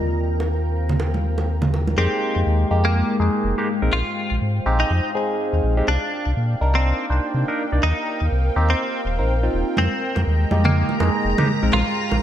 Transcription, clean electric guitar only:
0, 0, Header, 1, 2, 480
1, 0, Start_track
1, 0, Tempo, 487805
1, 27, Time_signature, 4, 2, 24, 8
1, 12030, End_track
2, 0, Start_track
2, 0, Title_t, "Clean electric guitar"
2, 0, Program_c, 0, 27
2, 1947, Note_on_c, 0, 60, 98
2, 2362, Note_off_c, 0, 60, 0
2, 2802, Note_on_c, 0, 58, 96
2, 3098, Note_off_c, 0, 58, 0
2, 3865, Note_on_c, 0, 65, 97
2, 4281, Note_off_c, 0, 65, 0
2, 4721, Note_on_c, 0, 63, 95
2, 5018, Note_off_c, 0, 63, 0
2, 5788, Note_on_c, 0, 62, 99
2, 6202, Note_off_c, 0, 62, 0
2, 6642, Note_on_c, 0, 60, 94
2, 6938, Note_off_c, 0, 60, 0
2, 7706, Note_on_c, 0, 63, 97
2, 8121, Note_off_c, 0, 63, 0
2, 8561, Note_on_c, 0, 60, 91
2, 8857, Note_off_c, 0, 60, 0
2, 9626, Note_on_c, 0, 60, 99
2, 10041, Note_off_c, 0, 60, 0
2, 10481, Note_on_c, 0, 58, 94
2, 10777, Note_off_c, 0, 58, 0
2, 11545, Note_on_c, 0, 65, 96
2, 11961, Note_off_c, 0, 65, 0
2, 12030, End_track
0, 0, End_of_file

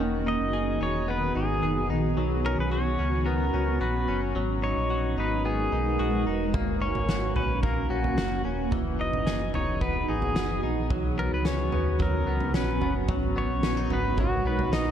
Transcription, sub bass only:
0, 0, Header, 1, 2, 480
1, 0, Start_track
1, 0, Time_signature, 4, 2, 24, 8
1, 0, Tempo, 545455
1, 13122, End_track
2, 0, Start_track
2, 0, Title_t, "Sub bass"
2, 0, Program_c, 0, 38
2, 0, Note_on_c, 0, 28, 103
2, 335, Note_off_c, 0, 28, 0
2, 353, Note_on_c, 0, 30, 75
2, 697, Note_off_c, 0, 30, 0
2, 711, Note_on_c, 0, 28, 85
2, 1169, Note_off_c, 0, 28, 0
2, 1195, Note_on_c, 0, 32, 96
2, 1424, Note_off_c, 0, 32, 0
2, 1437, Note_on_c, 0, 30, 85
2, 1665, Note_off_c, 0, 30, 0
2, 1670, Note_on_c, 0, 34, 91
2, 1901, Note_off_c, 0, 34, 0
2, 1911, Note_on_c, 0, 35, 96
2, 2256, Note_off_c, 0, 35, 0
2, 2274, Note_on_c, 0, 35, 90
2, 2617, Note_off_c, 0, 35, 0
2, 2633, Note_on_c, 0, 37, 84
2, 3090, Note_off_c, 0, 37, 0
2, 3111, Note_on_c, 0, 37, 73
2, 3342, Note_off_c, 0, 37, 0
2, 3353, Note_on_c, 0, 34, 93
2, 3583, Note_off_c, 0, 34, 0
2, 3591, Note_on_c, 0, 30, 81
2, 3822, Note_off_c, 0, 30, 0
2, 3833, Note_on_c, 0, 32, 96
2, 4176, Note_off_c, 0, 32, 0
2, 4196, Note_on_c, 0, 34, 75
2, 4538, Note_off_c, 0, 34, 0
2, 4550, Note_on_c, 0, 32, 77
2, 5009, Note_off_c, 0, 32, 0
2, 5035, Note_on_c, 0, 35, 90
2, 5264, Note_off_c, 0, 35, 0
2, 5277, Note_on_c, 0, 34, 97
2, 5505, Note_off_c, 0, 34, 0
2, 5516, Note_on_c, 0, 28, 85
2, 5744, Note_off_c, 0, 28, 0
2, 5754, Note_on_c, 0, 30, 97
2, 6097, Note_off_c, 0, 30, 0
2, 6118, Note_on_c, 0, 32, 79
2, 6459, Note_off_c, 0, 32, 0
2, 6471, Note_on_c, 0, 34, 90
2, 6929, Note_off_c, 0, 34, 0
2, 6952, Note_on_c, 0, 34, 79
2, 7182, Note_off_c, 0, 34, 0
2, 7192, Note_on_c, 0, 30, 92
2, 7422, Note_off_c, 0, 30, 0
2, 7430, Note_on_c, 0, 27, 86
2, 7661, Note_off_c, 0, 27, 0
2, 7673, Note_on_c, 0, 28, 100
2, 8016, Note_off_c, 0, 28, 0
2, 8030, Note_on_c, 0, 30, 75
2, 8375, Note_off_c, 0, 30, 0
2, 8393, Note_on_c, 0, 28, 80
2, 8851, Note_off_c, 0, 28, 0
2, 8873, Note_on_c, 0, 32, 83
2, 9103, Note_off_c, 0, 32, 0
2, 9118, Note_on_c, 0, 30, 86
2, 9345, Note_off_c, 0, 30, 0
2, 9354, Note_on_c, 0, 34, 79
2, 9583, Note_off_c, 0, 34, 0
2, 9594, Note_on_c, 0, 35, 109
2, 9937, Note_off_c, 0, 35, 0
2, 9955, Note_on_c, 0, 37, 69
2, 10297, Note_off_c, 0, 37, 0
2, 10311, Note_on_c, 0, 39, 75
2, 10769, Note_off_c, 0, 39, 0
2, 10796, Note_on_c, 0, 37, 79
2, 11033, Note_on_c, 0, 34, 86
2, 11046, Note_off_c, 0, 37, 0
2, 11263, Note_off_c, 0, 34, 0
2, 11272, Note_on_c, 0, 30, 86
2, 11502, Note_off_c, 0, 30, 0
2, 11516, Note_on_c, 0, 32, 96
2, 11858, Note_off_c, 0, 32, 0
2, 11871, Note_on_c, 0, 34, 76
2, 12216, Note_off_c, 0, 34, 0
2, 12232, Note_on_c, 0, 32, 92
2, 12690, Note_off_c, 0, 32, 0
2, 12710, Note_on_c, 0, 35, 88
2, 12941, Note_off_c, 0, 35, 0
2, 12950, Note_on_c, 0, 34, 83
2, 13122, Note_off_c, 0, 34, 0
2, 13122, End_track
0, 0, End_of_file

